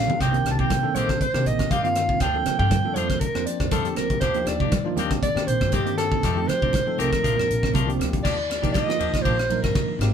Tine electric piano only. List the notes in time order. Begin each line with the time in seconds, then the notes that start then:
Already playing: F3 A#3 C4 D4 A4
0.31 D#3 A#3 C4 D4 G4
0.82 D#3 A#3 C4 D4 A4
1.34 D#3 A#3 C4 D4 G4
1.83 D#3 A#3 C4 D4 F4
2.34 F3 A#3 C4 D4 A4
2.83 F3 A#3 C4 D4 A4
3.34 F3 A#3 C4 D4 C5
3.84 F3 A#3 C4 D4 G4
4.34 F3 A#3 D4 D#4 G4
4.84 F3 A#3 D4 D#4 F4
4.95 D#3 A#3 C4 D4 G4
5.34 D#3 A#3 C4 D4 G4
5.85 D#3 A#3 C4 D4 G4
6.35 F3 A3 C4 D#4 G4
6.86 F3 A3 C4 D#4 A4
7.36 F3 A#3 C4 D4 A#4
7.86 F3 A#3 C4 D4 G4
8.62 F3 A#3 D4 D#4 G4
8.86 F3 A#3 D#4 F4
9.50 F3 A#3 D4 D#4 A#4
10.01 G#3 A#3 C4 D#4 G4